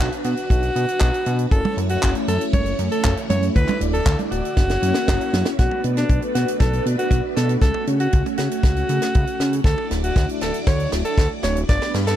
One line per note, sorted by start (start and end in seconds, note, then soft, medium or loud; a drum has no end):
0.00 1.48 D4 medium
0.00 0.11 F#4 loud
0.00 5.55 F#4 medium
0.00 1.48 B4 medium
0.12 closed hi-hat medium
0.24 0.35 B2 medium
0.24 1.42 F#4 loud
0.24 closed hi-hat medium
0.37 closed hi-hat medium
0.50 0.70 B1 medium
0.50 kick loud
0.50 closed hi-hat medium
0.63 closed hi-hat medium
0.76 0.86 B2 medium
0.76 closed hi-hat medium
0.88 closed hi-hat medium
1.00 1.11 B1 loud
1.00 kick loud
1.00 clap loud
1.00 closed hi-hat medium
1.14 closed hi-hat medium
1.26 1.47 B2 loud
1.26 closed hi-hat medium
1.39 closed hi-hat medium
1.51 1.62 F#1 loud
1.51 4.54 A3 medium
1.51 3.53 C#4 medium
1.51 4.54 E4 medium
1.51 1.76 A4 loud
1.51 3.53 C#5 medium
1.51 kick loud
1.51 closed hi-hat medium
1.65 high tom medium
1.77 1.97 F#2 medium
1.77 closed hi-hat medium
1.89 2.14 F#4 loud
1.89 closed hi-hat medium
2.03 2.13 F#1 loud
2.03 kick medium
2.03 clap loud
2.03 closed hi-hat medium
2.15 closed hi-hat soft
2.28 2.38 F#2 medium
2.28 2.44 A4 medium
2.28 closed hi-hat loud
2.41 closed hi-hat medium
2.53 2.74 F#1 medium
2.53 2.78 C#5 loud
2.53 kick loud
2.53 closed hi-hat medium
2.53 high tom medium
2.66 closed hi-hat medium
2.79 2.89 F#2 medium
2.79 closed hi-hat loud
2.92 3.16 A4 loud
2.92 closed hi-hat medium
3.04 3.15 F#1 loud
3.04 kick medium
3.04 clap loud
3.04 closed hi-hat medium
3.17 closed hi-hat medium
3.30 3.50 F#2 medium
3.30 3.46 C#5 medium
3.30 closed hi-hat medium
3.30 high tom medium
3.43 closed hi-hat medium
3.55 3.66 D2 loud
3.55 4.56 D4 medium
3.55 3.80 B4 loud
3.55 4.56 D5 medium
3.55 kick loud
3.55 closed hi-hat medium
3.68 clap soft
3.68 closed hi-hat medium
3.68 high tom medium
3.81 4.01 D1 medium
3.81 closed hi-hat medium
3.93 4.18 A4 loud
3.93 closed hi-hat medium
4.06 4.16 D2 loud
4.06 kick loud
4.06 clap loud
4.06 closed hi-hat medium
4.19 closed hi-hat medium
4.19 high tom medium
4.31 4.42 D1 medium
4.31 5.48 F#4 loud
4.31 closed hi-hat medium
4.45 closed hi-hat medium
4.57 4.77 F#1 medium
4.57 5.58 A#3 medium
4.57 5.58 C#4 medium
4.57 5.58 E4 medium
4.57 5.58 C#5 medium
4.57 kick loud
4.57 snare medium
4.57 closed hi-hat medium
4.69 snare medium
4.69 closed hi-hat medium
4.83 4.93 F#2 medium
4.83 closed hi-hat loud
4.94 snare medium
4.94 closed hi-hat medium
5.08 5.18 F#1 loud
5.08 kick medium
5.08 snare medium
5.08 clap loud
5.08 closed hi-hat medium
5.21 closed hi-hat medium
5.33 5.43 F#2 loud
5.33 snare medium
5.33 closed hi-hat medium
5.45 snare medium
5.45 closed hi-hat medium
5.59 5.69 B1 loud
5.59 12.16 A3 medium
5.59 7.60 B3 medium
5.59 7.60 D4 medium
5.59 5.83 F#4 loud
5.59 9.61 F#4 medium
5.59 7.60 B4 medium
5.59 kick loud
5.59 snare soft
5.59 closed hi-hat medium
5.71 high tom medium
5.84 6.04 B2 medium
5.84 closed hi-hat medium
5.97 6.21 D4 medium
5.97 snare soft
5.97 closed hi-hat medium
6.09 6.20 B1 loud
6.09 kick loud
6.09 closed hi-hat loud
6.22 closed hi-hat soft
6.35 6.45 B2 medium
6.35 6.51 F#4 medium
6.35 snare medium
6.35 closed hi-hat loud
6.48 closed hi-hat medium
6.60 6.81 B1 medium
6.60 6.85 A4 medium
6.60 kick loud
6.60 snare medium
6.60 closed hi-hat medium
6.60 high tom medium
6.73 closed hi-hat medium
6.86 6.96 B2 medium
6.86 closed hi-hat medium
6.99 7.23 F#4 medium
6.99 closed hi-hat medium
7.11 7.21 B1 medium
7.11 kick loud
7.11 closed hi-hat medium
7.36 7.57 B2 medium
7.36 7.53 A4 medium
7.36 snare medium
7.36 closed hi-hat loud
7.36 high tom medium
7.49 closed hi-hat medium
7.62 7.72 C#2 loud
7.62 9.63 C#4 medium
7.62 7.86 A4 loud
7.62 kick loud
7.62 snare medium
7.62 closed hi-hat medium
7.74 high tom medium
7.87 8.08 C#3 medium
7.87 closed hi-hat medium
8.00 8.24 F#4 medium
8.00 closed hi-hat medium
8.13 8.23 C#2 loud
8.13 kick loud
8.13 closed hi-hat medium
8.26 closed hi-hat medium
8.26 high tom medium
8.38 8.48 C#3 medium
8.38 9.55 F#4 loud
8.38 snare medium
8.38 closed hi-hat medium
8.51 closed hi-hat medium
8.63 8.84 C#2 medium
8.63 kick loud
8.63 snare medium
8.63 closed hi-hat medium
8.76 closed hi-hat medium
8.89 8.99 C#3 medium
8.89 closed hi-hat medium
9.02 snare medium
9.02 closed hi-hat medium
9.14 9.25 C#2 loud
9.14 kick loud
9.14 closed hi-hat medium
9.27 closed hi-hat medium
9.40 9.60 C#3 medium
9.40 snare medium
9.40 closed hi-hat medium
9.53 closed hi-hat medium
9.64 9.75 D2 loud
9.64 11.67 D4 medium
9.64 11.67 E4 medium
9.64 11.67 F#4 medium
9.64 9.90 A4 loud
9.64 11.67 D5 medium
9.64 kick loud
9.64 snare medium
9.64 closed hi-hat medium
9.78 high tom medium
9.91 10.11 D1 medium
9.91 snare medium
9.91 closed hi-hat medium
10.04 10.28 F#4 loud
10.04 closed hi-hat medium
10.16 10.26 D2 loud
10.16 kick loud
10.16 snare medium
10.16 closed hi-hat medium
10.29 closed hi-hat medium
10.41 10.52 D1 medium
10.41 10.58 A4 medium
10.41 snare medium
10.41 closed hi-hat medium
10.54 closed hi-hat medium
10.67 10.87 D2 medium
10.67 10.91 C#5 loud
10.67 kick loud
10.67 snare medium
10.67 closed hi-hat loud
10.67 high tom medium
10.80 closed hi-hat medium
10.92 11.03 D1 medium
10.92 snare medium
10.92 closed hi-hat medium
11.05 11.29 A4 medium
11.05 closed hi-hat medium
11.18 11.28 D2 medium
11.18 kick loud
11.18 snare medium
11.18 closed hi-hat medium
11.43 11.64 D1 loud
11.43 11.59 C#5 medium
11.43 snare medium
11.43 closed hi-hat medium
11.43 high tom medium
11.56 closed hi-hat medium
11.69 11.79 G1 loud
11.69 12.16 B3 medium
11.69 12.16 D4 medium
11.69 12.16 G4 medium
11.69 12.16 B4 medium
11.69 11.93 D5 loud
11.69 kick loud
11.69 snare medium
11.69 closed hi-hat medium
11.82 snare medium
11.82 high tom medium
11.94 12.14 G2 medium
11.94 snare medium
11.94 closed hi-hat medium
12.07 12.16 A4 loud
12.07 snare medium
12.07 closed hi-hat medium